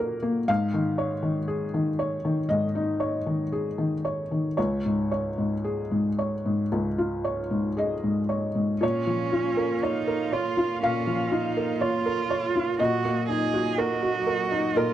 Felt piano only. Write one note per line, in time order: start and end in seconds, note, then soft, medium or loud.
0.00 0.45 A#2 soft
0.00 0.22 A#3 soft
0.00 0.51 D#4 soft
0.00 0.51 F#4 soft
0.00 0.51 A#4 soft
0.00 0.51 F#5 medium
0.22 0.48 A#3 soft
0.48 2.45 G#2 soft
0.48 2.45 F5 medium
0.74 1.14 D#3 soft
0.98 1.38 C#5 soft
1.23 1.63 D#3 soft
1.48 1.88 G#4 soft
1.74 2.14 D#3 soft
1.99 2.39 C#5 soft
2.25 2.65 D#3 soft
2.49 4.53 G#2 soft
2.49 4.53 D#5 medium
2.75 3.15 D#4 soft
3.00 3.41 C#5 soft
3.26 3.67 D#3 soft
3.52 3.94 G#4 soft
3.78 4.20 D#3 soft
4.05 4.47 C#5 soft
4.31 4.58 D#3 soft
4.57 6.68 C#2 soft
4.57 5.10 C#5 soft
4.85 5.27 G#2 soft
5.11 5.54 C#5 soft
5.38 5.80 G#2 soft
5.64 6.07 G#4 soft
5.91 6.34 G#2 soft
6.19 6.61 C#5 soft
6.45 6.88 G#2 soft
6.72 8.79 C#2 soft
6.98 7.41 F4 soft
7.24 7.67 C#5 soft
7.50 7.93 G#2 soft
7.77 8.19 G#4 soft
7.77 8.79 D#5 medium
8.03 8.46 G#2 soft
8.29 8.72 C#5 soft
8.55 8.82 G#2 soft
8.81 10.78 A#2 soft
8.81 9.81 C#5 soft
9.07 9.48 F3 soft
9.32 9.73 F4 soft
9.57 9.98 A#4 soft
9.83 10.23 C#5 soft
10.07 10.48 A#4 soft
10.32 10.73 C#5 soft
10.57 10.97 F4 soft
10.83 12.75 A#2 soft
10.83 12.76 F5 medium
11.07 11.46 F3 soft
11.31 11.71 F4 soft
11.57 11.96 A#4 soft
11.81 12.20 C#5 soft
12.06 12.45 A#4 soft
12.30 12.70 C#5 soft
12.56 12.80 F4 soft
12.79 14.72 A#2 soft
12.79 14.72 D#5 medium
13.05 13.44 A#3 soft
13.29 13.68 D#4 soft
13.54 13.93 F#4 soft
13.78 14.17 A#4 soft
14.02 14.42 F#4 soft
14.27 14.66 A#4 soft
14.51 14.91 D#4 soft
14.75 14.94 A#2 soft
14.75 14.94 A#4 medium